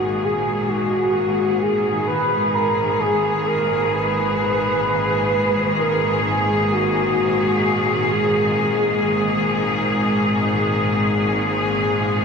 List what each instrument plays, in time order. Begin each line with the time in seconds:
Already playing: synth drone G#1 G#2, cello section G#2 A#2 D#3 G#4, soft synth lead F#4
0.24 soft synth lead G#4
0.69 soft synth lead F#4
1.62 soft synth lead G#4
2.08 soft synth lead B4
2.54 soft synth lead A#4
3.00 soft synth lead G#4
3.46 soft synth lead A#4
3.93 soft synth lead B4
5.80 soft synth lead A#4
6.25 soft synth lead G#4
6.72 soft synth lead F#4
8.12 soft synth lead G#4